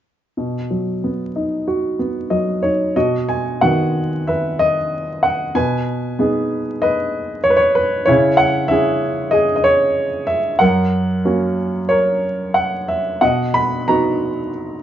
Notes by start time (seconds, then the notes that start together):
0.37 B2
0.71 F#3
1.04 B3
1.36 D#4
1.68 F#4
1.99 B3
2.30 F#3 D#5
2.62 D#4 C#5
2.96 B2 F#4 D#5
3.29 G#5
3.61 D#3 B3 F#4 F#5
4.27 B4 E5
4.59 D#5
5.23 F#5
5.55 B2 B4 G#5
6.19 B3 D#4 G#4
6.82 B4 D#5
7.44 C#5
7.50 B4
7.57 C#5
7.75 B4
8.05 C#3 E4 C#5
8.37 F#5
8.68 C#4 E4 G#4 E5
9.31 G#4 D#5
9.56 D#5
9.64 C#5
10.27 E5
10.59 F#2 A#4 F#5
11.25 A#3 C#4 F#4
11.89 A#4 C#5
12.54 F#5
12.88 E5
13.21 B2 D#5 F#5
13.54 B5
13.88 B3 D#4 F#4 A#5